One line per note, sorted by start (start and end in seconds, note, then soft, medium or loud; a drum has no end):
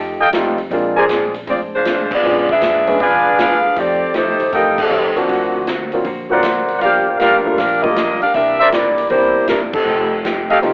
0.00 0.30 F2 medium
0.00 0.22 F3 soft
0.00 0.22 A3 medium
0.00 0.23 D#4 medium
0.00 0.23 G4 medium
0.20 0.29 A4 medium
0.20 0.29 D#5 medium
0.20 0.29 F5 medium
0.20 0.29 G5 medium
0.31 0.67 F2 medium
0.31 0.59 F3 medium
0.31 0.56 G3 medium
0.31 0.60 A3 medium
0.31 0.56 A3 medium
0.31 0.56 C4 medium
0.31 0.56 D#4 medium
0.31 0.60 D#4 medium
0.31 snare medium
0.31 closed hi-hat medium
0.35 0.57 F4 medium
0.35 0.61 G4 medium
0.58 open hi-hat soft
0.71 1.43 A#1 medium
0.71 0.98 A#2 medium
0.71 0.94 G#3 medium
0.71 0.99 G#3 medium
0.71 0.94 A#3 medium
0.71 0.95 C4 medium
0.71 0.99 C4 medium
0.71 0.95 D4 medium
0.71 0.95 F4 medium
0.71 kick soft
0.71 open hi-hat soft
0.75 0.99 D4 medium
0.96 1.34 D4 medium
0.96 1.33 G#4 medium
0.96 1.05 A#4 medium
0.96 1.05 C5 medium
0.96 1.05 D5 medium
0.96 1.05 G#5 medium
1.00 1.34 F3 medium
1.00 1.34 C4 medium
1.09 1.36 A#2 medium
1.09 1.37 G#3 medium
1.09 1.37 C4 medium
1.09 1.37 D4 medium
1.09 snare medium
1.09 closed hi-hat medium
1.34 open hi-hat soft
1.47 2.20 F1 medium
1.47 1.74 A#2 soft
1.47 1.74 G#3 soft
1.47 1.75 C4 medium
1.47 1.61 C4 medium
1.47 1.75 D4 soft
1.47 1.60 F4 medium
1.47 1.60 G#4 medium
1.47 1.60 D5 medium
1.47 kick soft
1.47 open hi-hat soft
1.75 2.10 G#3 medium
1.75 2.09 D4 medium
1.75 2.10 F4 medium
1.75 2.10 C5 medium
1.85 2.13 A#2 medium
1.85 2.13 G#3 medium
1.85 2.13 C4 medium
1.85 2.14 D4 medium
1.85 snare medium
1.85 closed hi-hat medium
2.11 2.48 B3 medium
2.11 2.48 F4 medium
2.11 2.48 G#4 medium
2.11 2.48 D5 loud
2.11 kick medium
2.11 crash medium
2.23 2.59 B1 medium
2.23 2.51 B2 soft
2.23 2.47 G#3 medium
2.23 2.51 G#3 soft
2.23 2.47 B3 medium
2.23 2.47 C#4 medium
2.23 2.47 D4 medium
2.23 2.52 D4 medium
2.23 2.48 F4 medium
2.28 2.52 F4 soft
2.49 2.98 D4 medium
2.49 2.98 G#4 medium
2.49 2.98 B4 medium
2.49 2.98 E5 loud
2.49 kick soft
2.61 2.97 F#2 medium
2.61 2.89 B2 medium
2.61 2.89 G#3 medium
2.61 2.89 D4 medium
2.61 2.90 F4 medium
2.61 snare medium
2.61 closed hi-hat medium
2.87 2.99 G#3 medium
2.87 2.99 B3 medium
2.87 2.99 C#4 medium
2.87 2.99 D4 medium
2.87 3.00 G#4 medium
2.87 open hi-hat soft
3.00 3.72 F2 medium
3.00 3.27 B2 soft
3.00 3.28 G#3 soft
3.00 3.28 D4 soft
3.00 3.38 D4 medium
3.00 3.38 G#4 medium
3.00 3.58 B4 medium
3.00 3.38 B4 medium
3.00 3.59 D5 medium
3.00 3.59 F5 medium
3.00 3.39 F5 medium
3.00 3.58 G#5 medium
3.00 kick soft
3.00 open hi-hat soft
3.04 3.29 F4 soft
3.38 3.65 B2 medium
3.38 3.66 G#3 medium
3.38 3.74 D4 medium
3.38 3.66 D4 medium
3.38 3.66 F4 medium
3.38 3.74 G#4 medium
3.38 3.74 B4 medium
3.38 3.75 F5 loud
3.38 snare medium
3.38 closed hi-hat medium
3.76 4.36 F2 medium
3.76 4.03 F3 soft
3.76 4.04 A3 soft
3.76 4.15 C4 medium
3.76 4.04 D#4 soft
3.76 4.15 G4 medium
3.76 4.05 G4 medium
3.76 4.15 A4 medium
3.76 4.15 D5 loud
3.76 kick soft
3.76 open hi-hat soft
4.14 4.41 F3 medium
4.14 4.41 A3 medium
4.14 4.51 A3 medium
4.14 4.42 D#4 medium
4.14 4.51 D#4 medium
4.14 4.42 G4 medium
4.14 4.51 G4 medium
4.14 4.51 C5 medium
4.14 snare medium
4.14 closed hi-hat medium
4.39 4.52 D#2 medium
4.39 open hi-hat soft
4.53 5.12 A2 medium
4.53 4.79 F3 soft
4.53 4.79 G3 medium
4.53 4.80 A3 soft
4.53 4.79 C4 medium
4.53 4.79 D#4 medium
4.53 4.81 D#4 soft
4.53 4.81 G4 medium
4.53 5.11 A4 medium
4.53 4.79 A#4 medium
4.53 5.11 D#5 medium
4.53 5.11 F5 medium
4.53 5.11 G5 medium
4.53 kick soft
4.53 open hi-hat soft
4.78 5.15 G3 medium
4.78 5.15 C4 medium
4.78 5.15 D#4 medium
4.78 5.15 A4 medium
4.78 kick medium
4.78 crash medium
4.90 5.17 F3 medium
4.90 5.18 A3 medium
4.90 5.18 D#4 medium
4.90 5.18 G4 medium
5.14 5.65 F3 medium
5.14 5.65 A#3 medium
5.14 5.65 C4 soft
5.14 5.65 D4 medium
5.14 5.65 F#4 medium
5.14 muted upright bass stroke soft
5.14 open hi-hat soft
5.19 5.69 C3 medium
5.19 5.69 F3 medium
5.19 5.69 A#3 medium
5.19 5.69 F#4 medium
5.29 6.01 D2 medium
5.29 5.56 D3 soft
5.29 5.56 A#3 soft
5.29 5.57 C4 soft
5.29 5.57 F#4 soft
5.29 kick soft
5.29 open hi-hat soft
5.67 5.94 D3 medium
5.67 5.94 A#3 medium
5.67 5.95 C4 medium
5.67 5.95 F#4 medium
5.67 snare medium
5.67 closed hi-hat medium
5.92 6.04 F#3 medium
5.92 6.05 A#3 medium
5.92 6.05 C4 medium
5.92 6.05 D4 soft
5.92 6.05 F4 medium
5.92 open hi-hat soft
6.04 6.78 A#1 medium
6.04 6.31 D3 soft
6.04 6.32 A#3 medium
6.04 6.33 C4 medium
6.04 6.33 F#4 soft
6.04 kick soft
6.04 open hi-hat soft
6.30 6.42 F#3 medium
6.30 6.42 A#3 medium
6.30 6.42 C4 medium
6.30 6.43 D4 medium
6.30 6.43 F4 medium
6.30 6.79 A#4 medium
6.30 6.79 C5 medium
6.30 6.79 D5 medium
6.30 6.79 F#5 medium
6.43 6.70 D3 medium
6.43 6.70 A#3 medium
6.43 6.70 C4 medium
6.43 6.71 F#4 medium
6.43 snare medium
6.43 closed hi-hat medium
6.68 open hi-hat soft
6.79 7.54 G1 medium
6.79 7.07 G2 soft
6.79 7.08 F3 soft
6.79 7.08 A#3 soft
6.79 7.09 D4 soft
6.79 7.19 G4 medium
6.79 7.19 A#4 medium
6.79 7.19 D5 medium
6.79 7.19 F5 medium
6.79 kick soft
6.79 open hi-hat soft
6.84 7.07 F3 medium
6.84 7.07 A#3 medium
6.84 7.07 D4 medium
6.84 7.07 G4 medium
7.09 7.20 F3 medium
7.09 7.20 A#3 medium
7.09 7.20 D4 medium
7.09 7.20 G4 medium
7.19 7.46 G2 medium
7.19 7.46 F3 medium
7.19 7.55 G3 medium
7.19 7.47 A#3 medium
7.19 7.56 D4 medium
7.19 7.48 D4 medium
7.19 7.56 F4 medium
7.19 7.37 G4 medium
7.19 7.37 A#4 medium
7.19 7.55 A#4 medium
7.19 7.37 D5 medium
7.19 7.37 F5 medium
7.19 snare medium
7.19 closed hi-hat medium
7.45 7.57 G3 medium
7.45 7.57 A3 medium
7.45 7.57 A#3 medium
7.45 7.57 D4 medium
7.45 7.58 F4 medium
7.58 8.17 A#1 medium
7.58 7.85 G2 soft
7.58 7.85 F3 soft
7.58 7.86 A#3 soft
7.58 7.84 D4 medium
7.58 7.86 D4 medium
7.58 7.81 G4 medium
7.58 7.83 A#4 medium
7.58 7.84 F5 medium
7.58 kick soft
7.58 snare soft
7.58 open hi-hat soft
7.82 7.95 G3 medium
7.82 7.95 A3 medium
7.82 8.21 A#3 medium
7.82 7.95 A#3 medium
7.82 7.95 D4 medium
7.82 8.21 F4 medium
7.82 7.95 F4 medium
7.82 8.21 G4 medium
7.82 8.21 D#5 loud
7.82 kick medium
7.96 8.23 G2 medium
7.96 8.23 F3 medium
7.96 8.23 A#3 medium
7.96 8.24 D4 medium
7.96 snare medium
7.96 closed hi-hat soft
8.21 8.34 D4 medium
8.21 8.34 G4 medium
8.21 8.34 A#4 medium
8.21 8.34 F5 loud
8.21 muted upright bass stroke soft
8.21 open hi-hat soft
8.34 9.07 C2 medium
8.34 8.61 C3 soft
8.34 8.62 E3 soft
8.34 8.62 A#3 medium
8.34 8.70 D4 medium
8.34 8.63 D4 soft
8.34 8.70 G4 medium
8.34 8.70 A#4 medium
8.34 8.70 E5 loud
8.34 kick soft
8.34 open hi-hat soft
8.60 8.68 A#4 medium
8.60 8.68 C5 medium
8.60 8.69 D5 medium
8.60 8.68 E5 loud
8.72 8.99 C3 medium
8.72 9.00 E3 medium
8.72 9.08 A#3 medium
8.72 9.00 A#3 medium
8.72 9.00 D4 medium
8.72 9.08 E4 medium
8.72 9.08 G4 medium
8.72 9.08 D5 medium
8.72 snare medium
8.72 closed hi-hat soft
8.98 open hi-hat soft
9.10 9.83 G1 medium
9.10 9.37 C3 soft
9.10 9.38 E3 medium
9.10 9.69 G3 medium
9.10 9.46 A#3 medium
9.10 9.69 A#3 medium
9.10 9.38 A#3 soft
9.10 9.70 C4 medium
9.10 9.70 D4 medium
9.10 9.39 D4 soft
9.10 9.46 E4 medium
9.10 9.70 E4 medium
9.10 9.46 G4 medium
9.10 9.46 C5 medium
9.10 kick soft
9.10 open hi-hat soft
9.48 9.76 C3 medium
9.48 9.76 E3 medium
9.48 9.60 G3 medium
9.48 9.76 A#3 medium
9.48 9.60 D4 medium
9.48 9.77 D4 medium
9.48 9.60 E4 medium
9.48 9.60 A#4 medium
9.48 snare medium
9.48 closed hi-hat medium
9.73 10.21 G3 medium
9.73 10.21 C4 medium
9.73 10.21 D#4 medium
9.73 10.21 A4 medium
9.73 kick medium
9.73 crash medium
9.86 10.59 F1 medium
9.86 10.14 F3 soft
9.86 10.14 A3 soft
9.90 10.15 D#4 soft
9.90 10.15 G4 medium
10.24 10.51 F3 medium
10.24 10.52 A3 medium
10.24 10.52 D#4 medium
10.24 10.52 G4 medium
10.24 snare medium
10.24 closed hi-hat medium
10.50 10.59 G4 medium
10.50 10.59 A4 medium
10.50 10.59 D#5 medium
10.50 10.59 F5 loud
10.50 open hi-hat soft
10.62 10.73 C2 medium
10.62 10.73 F3 soft
10.62 10.73 G3 medium
10.62 10.73 A3 medium
10.62 10.73 C4 medium
10.62 10.73 D#4 medium
10.62 10.73 F4 medium
10.62 kick soft
10.62 open hi-hat soft
10.67 10.73 G4 medium